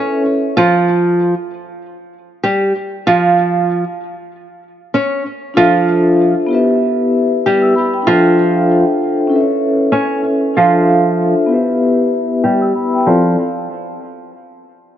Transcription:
Already playing: C#4 E4 A4 C#5 E5
0.57 F3 F4
2.43 G3 G4
3.07 F3 F4
4.94 C#4 C#5
5.54 F3 D4 F4 A4 C5
5.58 E5
6.47 B3 E4
6.51 G4 B4
6.55 E5
7.46 G3 G4
7.62 E6
7.75 B5
7.94 G5
8.02 D4 F4
8.06 F3 F4 A4 C5
8.11 E5
9.27 C#4 E4
9.31 A4 B4
9.35 E5
9.40 C#5
9.92 C#4 C#5
10.54 F3 D4 F4 A4 C5
10.58 E5
11.46 B3 E4
11.50 G4 B4
11.55 E5
12.44 G3 G4
12.62 E6
12.76 B5
12.94 G5
13.06 F3 C4 E4 F4 A4 D5

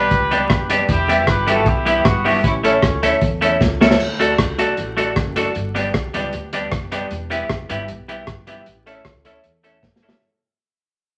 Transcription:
Already playing: B1 G4 B4
0.11 C#2, kick, closed hi-hat
0.31 G3 B3 D4 G4 B4 D5, closed hi-hat
0.50 F#1, muted clean electric guitar stroke, kick, cross-stick, closed hi-hat
0.70 G3 B3 D4 G4 B4 D5, closed hi-hat
0.89 E1 E4 G4, kick, closed hi-hat
1.08 G3 B3 E4 G4 B4 E5, closed hi-hat
1.27 G1 G4 B4, kick, cross-stick, closed hi-hat
1.47 G3 B3 E4 F#4 G4 A4 B4 E5, closed hi-hat
1.66 B1 E4 G4, kick, closed hi-hat
1.85 G3 B3 E4 G4 B4 E5, closed hi-hat
2.05 G1 B3 F#4, kick, cross-stick, closed hi-hat
2.25 G3 B3 D4 E4 F#4 G4 B4 E5, open hi-hat
2.44 A1 C#4 E4, kick, closed hi-hat
2.63 A3 C#4 E4 A4 C#5 E5, closed hi-hat
2.82 C#2, kick, cross-stick, closed hi-hat
3.02 D2 A3 C#4 E4 A4 C#5 E5, closed hi-hat
3.21 E2, kick, closed hi-hat
3.41 A3 C#4 E4 A4 C#5 E5, closed hi-hat
3.60 C#2, muted clean electric guitar stroke, kick, snare
3.81 A3 C#4 E4 A4 C#5 E5, snare
3.91 snare
4.00 D2, crash
4.19 A3 D4 F#4 A4 D5, closed hi-hat
4.38 C#2 A4 D5, kick, cross-stick, closed hi-hat
4.58 B1 A3 D4 F#4 A4 D5, closed hi-hat
4.76 A1, muted clean electric guitar stroke, closed hi-hat
4.97 A3 D4 F#4 A4 D5, closed hi-hat
5.16 F#1, kick, cross-stick, closed hi-hat
5.36 A3 D4 F#4 A4 D5, closed hi-hat
5.55 G1, closed hi-hat
5.75 G3 B3 D4 G4 B4 D5, closed hi-hat
5.94 B1 B4 D5, kick, cross-stick, closed hi-hat
6.14 C#2 G3 B3 D4 G4 B4 D5, closed hi-hat
6.32 D2, muted clean electric guitar stroke, closed hi-hat
6.53 G3 B3 D4 G4 B4 D5, closed hi-hat
6.72 F#1, kick, cross-stick, closed hi-hat
6.92 G3 B3 D4 G4 B4 D5, closed hi-hat
7.11 E1, closed hi-hat
7.30 G3 B3 E4 G4 B4 E5, closed hi-hat
7.49 F#1 B4 E5, kick, cross-stick, closed hi-hat
7.69 G1 G3 B3 E4 G4 B4 E5, closed hi-hat
7.88 B1, muted clean electric guitar stroke, closed hi-hat
8.08 G3 B3 E4 G4 B4 E5, closed hi-hat
8.27 G1, kick, cross-stick, closed hi-hat
8.47 G3 B3 E4 G4 B4 E5, closed hi-hat
8.66 A1, closed hi-hat
8.86 A3 C#4 E4 A4 C#5 E5, closed hi-hat
9.05 C#2 C#5 E5, kick, cross-stick, closed hi-hat
9.24 D2 A3 C#4 E4 A4 C#5 E5, closed hi-hat
9.44 E2, muted clean electric guitar stroke, closed hi-hat
9.63 A3 C#4 E4 A4 C#5 E5, closed hi-hat
9.83 G1, kick, snare
9.96 snare
10.02 A3 C#4 E4 A4 C#5 E5
10.09 snare

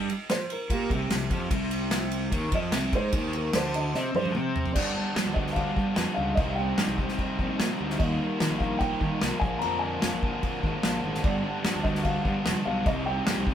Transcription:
Already playing: D#5
0.10 ride
0.30 C5, snare, ride
0.50 A#4, ride
0.70 A#2 A#3 G4, kick, ride
0.90 C2 C3 G4, kick, ride
1.10 C2 C3, snare, ride
1.30 F2 F3, kick, ride
1.50 C2 C3, kick, ride
1.71 ride
1.91 snare, ride
2.11 ride
2.31 D#2 D#3, kick, ride
2.52 F2 F3 D#5, kick, ride
2.72 C2 C3, snare, ride
2.93 G#2 G#3 C5, kick, ride
3.13 D#2 D#3, kick, ride
3.33 A#4, ride
3.53 D2 D3 C5, snare, ride
3.74 D#5, ride
3.94 C3 C4 D#5, snare
4.15 G2 G3 C5, high tom
4.25 high tom
4.35 C3 C4, mid tom
4.56 floor tom
4.66 floor tom
4.72 G2 D3 G3 D5, kick, crash
4.77 B3 D4
4.95 G2 D3 G3 B3 D4
5.15 G2 D3 G3 B3 D4, snare, crash
5.26 D2
5.34 G2 D3 G3 B3 D4 D#5, kick
5.47 snare
5.53 G2 D3 G3 B3 D4 F5, kick, crash
5.76 G2 D3 G3 B3 D4, kick
5.96 F2 G2 D3 G3 B3 D4, snare, crash
6.14 C#2 G2 D3 G3 B3 D4 F5
6.35 C2 C3 G3 C4 D#4 D#5, kick, crash
6.50 F5
6.55 C3 G3 C4 D#4 G5
6.78 G2 C3 G3 C4 D#4, snare, crash
6.88 C2
6.98 C3 G3 C4 D#4, kick
7.08 snare
7.19 C3 G3 C4 D#4, kick, crash
7.39 A#1 C3 G3 C4 D#4, kick
7.59 A#2 C3 G3 C4 D#4, snare, crash
7.80 D2 C3 G3 C4 D#4
7.90 snare
7.98 D#2 D#3 G3 A#3 D#4 D#5, kick, crash
8.20 D#3 G3 A#3 D#4
8.40 D#3 G3 A#3 D#4, snare, crash
8.51 A#1
8.58 D#3 G3 A#3 D#4 F5, kick
8.79 D#3 G3 A#3 D#4 G5, kick, crash
9.01 D#3 G3 A#3 D#4, kick
9.21 C2 D#3 G3 A#3 D#4, snare, crash
9.40 A#1 A#2 D3 F3 A#3 D4 G#5, kick
9.59 A#2 D3 F3 A#3 D4 A#5, crash
9.63 F2
9.79 A#2 D3 F3 A#3 D4 G#5
10.01 F2 A#2 D3 F3 A#3 D4, snare, crash
10.13 A#1
10.21 A#2 D3 F3 A#3 D4, kick
10.42 A#2 D3 F3 A#3 D4, kick, crash
10.62 G#1 A#2 D3 F3 A#3 D4, kick
10.83 A#1 A#2 D3 F3 A#3 D4, snare, crash
11.03 G#1 A#2 D3 F3 A#3 D4
11.14 snare
11.23 G1 G2 D3 G3 B3 D4 D5, kick, crash
11.43 G2 D3 G3 B3 D4
11.63 G2 D3 G3 B3 D4, snare, crash
11.75 D2
11.83 G2 D3 G3 B3 D4 D#5, kick
11.95 snare
12.03 G2 D3 G3 B3 D4 F5, kick, crash
12.24 G2 D3 G3 B3 D4, kick
12.44 F1 G2 D3 G3 B3 D4, snare, crash
12.65 B1 G2 D3 G3 B3 D4 F5
12.85 C2 C3 G3 C4 D#4 D#5, kick, crash
13.06 C3 G3 C4 D#4 G5
13.25 G2 C3 G3 C4 D#4, snare, crash
13.37 C2
13.47 C3 G3 C4 D#4, kick

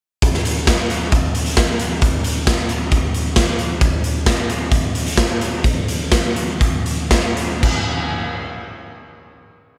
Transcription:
0.22 kick, closed hi-hat
0.34 snare
0.45 closed hi-hat
0.67 kick, snare, closed hi-hat
0.90 closed hi-hat
1.12 kick, closed hi-hat
1.35 closed hi-hat
1.46 closed hi-hat
1.57 kick, snare, closed hi-hat
1.79 closed hi-hat
2.02 kick, closed hi-hat
2.24 closed hi-hat
2.47 kick, snare, closed hi-hat
2.69 closed hi-hat
2.91 kick, closed hi-hat
3.14 closed hi-hat
3.36 kick, snare, closed hi-hat
3.59 closed hi-hat
3.81 kick, closed hi-hat
4.04 closed hi-hat
4.26 kick, snare, closed hi-hat
4.49 closed hi-hat
4.72 kick, closed hi-hat
4.95 closed hi-hat
5.06 closed hi-hat
5.17 kick, snare, closed hi-hat
5.41 closed hi-hat
5.64 kick, closed hi-hat
5.88 closed hi-hat
6.12 kick, snare, closed hi-hat
6.36 closed hi-hat
6.61 kick, closed hi-hat
6.86 closed hi-hat
7.11 kick, snare, closed hi-hat
7.37 closed hi-hat
7.63 kick, crash

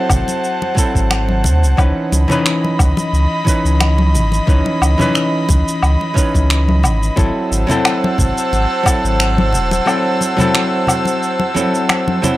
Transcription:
Already playing: F#3 C4 E4 A4 C5 F#5 A5
0.10 G#1, kick, low conga, low woodblock, shaker
0.28 muted conga, shaker
0.44 shaker
0.62 muted conga
0.75 F#3 C4 E4, kick, shaker
0.79 A4
0.95 G#1, kick, shaker
1.10 finger snap, muted conga, low woodblock, shaker
1.29 high conga
1.44 D#2, muted conga, low conga, shaker
1.63 C2, shaker
1.77 C#2 E3 C#4 D#4 B4 D#5 B5, kick, muted conga, low woodblock, shaker
2.12 C#2, muted conga, shaker
2.28 E3 C#4 D#4, low conga, shaker
2.32 B4
2.46 finger snap, shaker
2.64 muted conga
2.79 C#2, kick, low conga, low woodblock, shaker
2.97 muted conga, shaker
3.13 C#2, shaker
3.45 E3 C#4 D#4, kick, muted conga, shaker
3.49 B4
3.65 C#2, shaker
3.81 finger snap, muted conga, low woodblock, shaker
3.98 high conga
4.14 G#1, low conga, shaker
4.32 muted conga, shaker
4.47 C#2 E3 C#4 D#4 B4, kick, shaker
4.66 muted conga
4.81 C#2, low woodblock, shaker
4.98 E3 C#4 D#4, high conga, low conga, shaker
5.02 B4
5.15 finger snap, muted conga, shaker
5.49 C#2, kick, muted conga, low conga, shaker
5.68 shaker
5.83 C#2, low woodblock, shaker
6.01 muted conga
6.14 E3 C#4 D#4, kick, shaker
6.18 B4
6.34 C#2, kick, muted conga, shaker
6.50 finger snap, shaker
6.68 high conga
6.83 G#1, muted conga, low conga, low woodblock, shaker
7.03 shaker
7.16 G#1 F#3 C4 E4 A4 C5 F#5 A5 E6, kick, muted conga, shaker
7.51 G#1, shaker
7.67 F#3 C4 E4, muted conga, low conga, shaker
7.71 A4
7.85 finger snap, low woodblock, shaker
8.04 muted conga
8.18 G#1, kick, low conga, shaker
8.38 shaker
8.52 G#1, muted conga, shaker
8.83 F#3 C4 E4, kick, muted conga, low woodblock, shaker
8.88 A4
9.04 G#1, shaker
9.20 finger snap, shaker
9.38 muted conga, high conga
9.53 D#1, low conga, shaker
9.71 muted conga, shaker
9.86 F#3 C4 E4 A4, low woodblock, shaker
10.21 muted conga, shaker
10.37 F#3 C4 E4, high conga, low conga, shaker
10.41 A4
10.55 finger snap, muted conga, shaker
10.87 low conga, low woodblock, shaker
11.05 muted conga, shaker
11.23 shaker
11.40 muted conga
11.54 F#3 C4 E4 A4, high conga, shaker
11.75 shaker
11.89 finger snap, muted conga, low woodblock, shaker
12.08 high conga
12.22 F#3 C4 E4 C5, muted conga, low conga, shaker

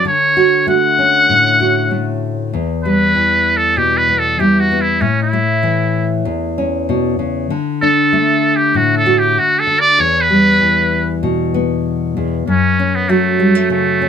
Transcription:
0.05 D3 C#5
0.37 F#4
0.67 A3 F#4 F#5
0.99 C#4
1.29 A2
1.60 F#4
1.91 A3
2.53 E2
2.84 G3 B4
3.15 E3
3.57 A4
3.77 B2 G4
3.97 B4
4.09 B3
4.18 A4
4.39 E3 G3 G4
4.60 F#4
4.72 B3
4.81 E4
5.01 A2 C#4
5.23 E4
5.33 A3
5.63 E3
6.25 E2
6.58 C#4
6.89 B2
7.19 C#3
7.50 D3
7.81 D4 A4
8.13 A3
8.56 G4
8.74 A2 F#4
8.97 A4
9.06 F#4
9.18 G4
9.39 F#4
9.59 A4
9.67 D3
9.80 D5
9.99 E2 C#5
10.21 B4
10.30 G3
10.60 E3
11.23 B2
11.54 B3
12.17 E2
12.47 F#2 C#4
12.79 C#4
12.95 B3
13.09 F#3 A3 F#4
13.40 G3
13.55 A3
13.70 C#3 A3
14.02 C#4

